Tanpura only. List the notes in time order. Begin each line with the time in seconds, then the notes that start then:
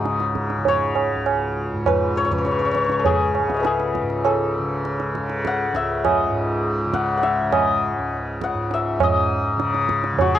Already playing: C#2 G#2
0.00 C#3
0.58 C#3
1.14 C#2
1.73 G#2
2.31 C#3
2.88 C#3
3.44 C#2
4.01 G#2
4.59 C#3
5.16 C#3
5.73 C#2
6.30 G#2
6.85 C#3
7.42 C#3
7.98 C#2
8.54 G#2
8.99 G#2
9.57 C#3
10.13 C#3